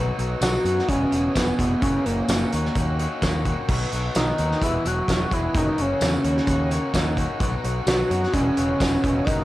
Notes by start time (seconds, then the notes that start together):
Already playing: B2 F#3 B3 D#4 F#4
0.17 B1 B2 F#3 B3 D#4 F#4, closed hi-hat
0.40 B1 B2 F#3 B3 D#4 F#4, snare, closed hi-hat, tambourine
0.64 F#2 B2 F#3 B3 D#4 F#4, closed hi-hat
0.79 snare
0.87 E1 E2 B2 E3 G#3 B3 C#4 F#4 G#4, kick, closed hi-hat
1.10 E1 E2 B2 E3 G#3 B3 F#4 G#4, closed hi-hat
1.34 E1 E2 B2 E3 G#3 B3 F#4 G#4, kick, snare, closed hi-hat, tambourine
1.57 F1 E2 B2 E3 G#3 B3 F#4 G#4, kick, closed hi-hat
1.80 F#1 F#2 C#3 E3 A#3 C#4 F#4, kick, closed hi-hat
2.04 F#1 F#2 C#3 E3 A#3 C#4 F#4, closed hi-hat
2.28 F#1 F#2 C#3 E3 A#3 C#4 F#4, snare, closed hi-hat, tambourine
2.52 D#2 D#3 A#3 C#4 D#4 F#4, closed hi-hat
2.65 snare
2.75 D#2 D#3 A#3 C#4 D#4 F#4, kick, closed hi-hat
2.99 D#3 A#3 C#4 D#4 F#4, closed hi-hat
3.22 D#2 D#3 A#3 C#4 D#4 F#4, kick, snare, closed hi-hat, tambourine
3.45 D#3 A#3 C#4 D#4 F#4, kick, closed hi-hat
3.69 B1 B2 F#3 B3 D#4 F#4, kick, crash
3.92 B1 B2 F#3 B3 D#4 F#4, closed hi-hat
4.15 B1 B2 F#3 B3 D#4 F#4 D#6, snare, closed hi-hat, tambourine
4.38 D#2 B2 F#3 B3 D#4 F#4, closed hi-hat
4.51 snare
4.62 E1 E2 B2 E3 G#3 B3 E4 F#4 G#4 E6, kick, closed hi-hat
4.77 E4 E6
4.85 E1 E2 B2 E3 G#3 B3 F#4 G#4 F#6, closed hi-hat
5.08 E1 E2 B2 E3 G#3 B3 F#4 G#4, kick, snare, closed hi-hat, tambourine
5.31 E1 E2 B2 E3 G#3 B3 E4 F#4 G#4 E6, kick, closed hi-hat
5.55 F#1 F#2 C#3 E3 A#3 C#4 D#4 F#4 D#6, kick, closed hi-hat
5.77 F#1 F#2 C#3 E3 A#3 C#4 F#4 C#6, closed hi-hat
6.01 E2 F#2 C#3 E3 A#3 C#4 F#4, snare, closed hi-hat, tambourine
6.24 D#2 D#3 A#3 C#4 D#4 F#4, closed hi-hat
6.37 snare
6.47 D#2 D#3 A#3 C#4 D#4 F#4, kick, closed hi-hat
6.70 D#3 A#3 C#4 D#4 F#4, closed hi-hat
6.94 D#2 D#3 A#3 C#4 D#4 F#4, kick, snare, closed hi-hat, tambourine
7.17 D#3 A#3 C#4 D#4 F#4, kick, closed hi-hat
7.40 B1 B2 F#3 B3 D#4 F#4, kick, closed hi-hat
7.64 B1 B2 F#3 B3 D#4 F#4, closed hi-hat
7.86 B1 B2 F#3 B3 D#4 F#4 F#6, snare, closed hi-hat, tambourine
8.10 F#2 B2 F#3 B3 D#4 F#4, closed hi-hat
8.23 snare
8.33 E1 E2 B2 E3 F#3 G#3 B3 C#4 F#4 G#4 C#6, kick, closed hi-hat
8.56 E1 E2 B2 E3 F#3 G#3 B3 F#4 G#4, closed hi-hat
8.79 E1 E2 B2 E3 F#3 G#3 B3 F#4 G#4, kick, snare, closed hi-hat, tambourine
9.03 E1 E2 B2 E3 F#3 G#3 B3 F#4 G#4, kick, closed hi-hat
9.25 F#1 F#2 C#3 E3 A#3 C#4 D#4 D#6, kick, closed hi-hat
9.29 F#4